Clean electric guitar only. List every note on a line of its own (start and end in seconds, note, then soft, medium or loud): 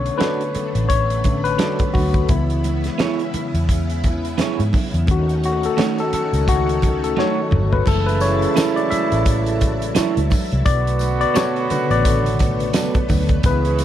0.19 0.41 D4 medium
0.19 0.42 F#4 medium
0.19 0.42 A4 medium
0.19 0.43 D5 medium
1.59 1.81 D4 medium
1.59 1.82 F#4 medium
1.59 1.82 A4 medium
1.59 1.82 D5 medium
2.98 3.21 B3 medium
2.98 3.21 E4 medium
2.98 3.21 G#4 medium
2.98 3.22 C#5 medium
4.38 4.60 B3 medium
4.38 4.60 E4 medium
4.38 4.61 G#4 medium
4.38 4.61 C#5 medium
5.77 5.99 A3 medium
5.77 6.00 D#4 medium
5.77 6.00 F#4 medium
5.77 6.00 C#5 medium
7.17 7.39 A3 medium
7.17 7.39 D#4 medium
7.17 7.40 F#4 medium
7.17 7.40 C#5 medium
8.56 8.78 C#4 medium
8.56 8.79 E4 medium
8.56 8.79 A4 medium
8.56 8.79 C#5 medium
9.95 10.17 C#4 medium
9.95 10.18 E4 medium
9.95 10.18 A4 medium
9.95 10.18 C#5 medium
11.34 11.57 B3 medium
11.34 11.57 F#4 medium
11.34 11.57 A4 medium
11.34 11.58 D5 medium
12.74 12.96 B3 medium
12.74 12.96 F#4 medium
12.74 12.97 A4 medium
12.74 12.97 D5 medium